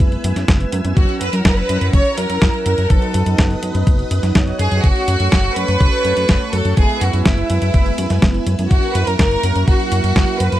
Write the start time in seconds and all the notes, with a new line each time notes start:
Already playing: G#3 B3 E4 B4 E5 G#5 E6
0.00 F#1
0.12 closed hi-hat
0.24 F#2, closed hi-hat
0.36 F#2, snare, closed hi-hat
0.48 F#1, kick, snare, closed hi-hat
0.60 closed hi-hat
0.72 F#2, closed hi-hat
0.85 F#2, closed hi-hat
0.97 F#1 F#3 C#4 E4 F#4 A#4 C#5 F#5 A#5, kick, closed hi-hat
1.09 closed hi-hat
1.21 F#2 B4, closed hi-hat
1.33 F#2 A#4, closed hi-hat
1.45 F#1 A#4, kick, snare, closed hi-hat
1.57 B4, closed hi-hat
1.69 F#2 F#3 C#4 E4 A#4, closed hi-hat
1.81 F#2, closed hi-hat
1.93 F#1 C#5, kick, closed hi-hat
2.05 closed hi-hat
2.18 F#2 A#4, closed hi-hat
2.30 F#2, closed hi-hat
2.42 F#1 F#3 C#4 E4 A#4, kick, snare, closed hi-hat
2.54 closed hi-hat
2.66 F#2 A#4, closed hi-hat
2.78 F#2, closed hi-hat
2.90 F#1 F#3 B3 D#4 A4 B4 D#5 D#6, kick, closed hi-hat
3.02 closed hi-hat
3.14 F#2, closed hi-hat
3.26 F#2, closed hi-hat
3.38 F#1, kick, snare, closed hi-hat
3.50 closed hi-hat
3.63 F#2 F#3 B3 D#4 B4, closed hi-hat
3.75 F#2, closed hi-hat
3.87 F#1, kick, closed hi-hat
3.99 closed hi-hat
4.11 F#2, closed hi-hat
4.23 F#2, snare, closed hi-hat
4.35 F#1 F#3 B3 D#4 C#5, kick, snare, closed hi-hat
4.47 closed hi-hat
4.59 F#2 G#4, closed hi-hat
4.72 F#2, closed hi-hat
4.84 F#1 A3 C#4 F#4 A4 C#5 C#6, kick, closed hi-hat
4.96 closed hi-hat
5.08 F#2, closed hi-hat
5.20 F#2, closed hi-hat
5.32 F#1, kick, snare, closed hi-hat
5.44 closed hi-hat
5.56 F#2 A3 C#4 F#4 B4 C#5, closed hi-hat
5.68 F#2, closed hi-hat
5.80 F#1, kick, closed hi-hat
5.93 closed hi-hat
6.05 F#2, closed hi-hat
6.17 F#2, closed hi-hat
6.29 F#1 A3 C#4 F#4 C#5, kick, snare, closed hi-hat
6.41 closed hi-hat
6.53 F#2 A4, closed hi-hat
6.65 F#2, closed hi-hat
6.77 F#1 G#3 B3 E4 G#4 B4 E5 G#5 E6, kick, closed hi-hat
6.89 closed hi-hat
7.01 F#2 F#4, closed hi-hat
7.13 F#2, closed hi-hat
7.26 F#1 E4, kick, snare, closed hi-hat
7.38 closed hi-hat
7.50 F#2 G#3 B3 E4 B4, closed hi-hat
7.62 F#2, closed hi-hat
7.74 F#1, kick, closed hi-hat
7.86 closed hi-hat
7.98 F#2, closed hi-hat
8.10 F#2, snare, closed hi-hat
8.22 F#1, kick, snare, closed hi-hat
8.34 closed hi-hat
8.47 F#2, closed hi-hat
8.59 F#2, closed hi-hat
8.71 F#1 F#3 C#4 E4 F#4 A#4 F#5 C#6, kick, closed hi-hat
8.83 closed hi-hat
8.95 F#2 B4, closed hi-hat
9.07 F#2 A#4, closed hi-hat
9.19 F#1 A#4, kick, snare, closed hi-hat
9.31 closed hi-hat
9.43 F#2 F#3 C#4 E4 A#4, closed hi-hat
9.56 F#2, closed hi-hat
9.68 F#1 F#4, kick, closed hi-hat
9.80 closed hi-hat
9.92 F#2, closed hi-hat
10.04 F#2, closed hi-hat
10.16 F#1 F#3 C#4 E4 A#4, kick, snare, closed hi-hat
10.28 closed hi-hat
10.40 F#2 B4, closed hi-hat
10.52 F#2, closed hi-hat